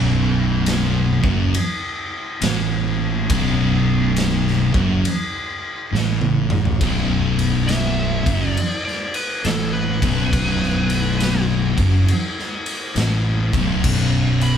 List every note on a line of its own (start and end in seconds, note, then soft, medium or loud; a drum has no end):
0.00 1.19 B0 loud
0.00 1.21 B1 loud
0.66 snare loud
0.66 ride bell medium
1.22 1.52 F#1 loud
1.22 1.53 F#2 loud
1.22 kick loud
1.54 ride bell medium
2.42 3.25 A1 medium
2.42 3.28 A2 loud
2.42 snare loud
2.42 ride bell medium
3.29 4.71 B0 loud
3.29 4.72 B1 loud
3.29 kick loud
3.29 ride bell medium
4.16 snare loud
4.16 ride bell medium
4.48 snare soft
4.73 5.03 F#1 loud
4.73 5.04 F#2 loud
4.73 kick loud
5.05 ride bell medium
5.92 6.77 A1 loud
5.92 6.79 A2 loud
5.92 snare medium
6.21 high tom medium
6.50 mid tom loud
6.65 floor tom medium
6.81 8.22 B0 medium
6.81 8.25 B1 loud
6.81 kick loud
6.81 ride loud
7.39 ride medium
7.67 8.45 E5 loud
7.67 snare loud
7.67 ride loud
8.26 8.54 F#1 medium
8.26 8.56 F#2 loud
8.26 kick loud
8.26 ride medium
8.45 8.82 D5 loud
8.57 ride loud
8.85 9.14 D5 medium
8.85 snare soft
9.14 9.43 B4 medium
9.14 ride medium
9.45 9.98 A1 medium
9.45 10.00 A2 loud
9.45 9.73 A4 medium
9.45 snare loud
9.45 ride loud
9.74 11.46 B4 loud
10.01 10.30 B0 medium
10.01 10.31 B1 loud
10.01 kick loud
10.01 ride medium
10.33 11.74 B0 loud
10.33 11.76 B1 loud
10.33 kick loud
10.33 ride loud
10.63 snare soft
10.90 ride medium
11.20 snare loud
11.20 ride loud
11.76 12.06 F#1 loud
11.76 12.07 F#2 loud
11.76 kick loud
11.76 ride medium
12.08 ride loud
12.39 snare soft
12.66 ride medium
12.96 13.49 A1 medium
12.96 13.51 A2 loud
12.96 snare loud
12.96 ride medium
13.52 13.82 B0 loud
13.52 13.83 B1 loud
13.52 kick loud
13.52 ride medium
13.84 14.58 B0 loud
13.84 14.58 B1 loud
13.84 kick loud
13.84 crash loud
14.41 14.58 B5 loud
14.41 ride medium